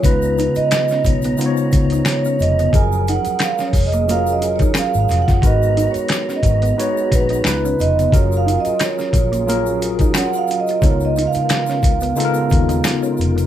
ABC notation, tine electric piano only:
X:1
M:4/4
L:1/8
Q:"Swing 16ths" 1/4=89
K:C#mix
V:1 name="Tine electric piano"
[C,G,B,DEB]3 z [C,G,B,DE^Bc]3 z | [E,F,CGA]3 z [F,CEGA]3 z | [G,DFAB]3 z [G,DFBc]2 [C,CDEB]2 | [F,CEGA]3 z [F,CEGA]3 z |
[C,G,B,DE=A^A]3 z [C,G,B,DE=A^A]3 z |]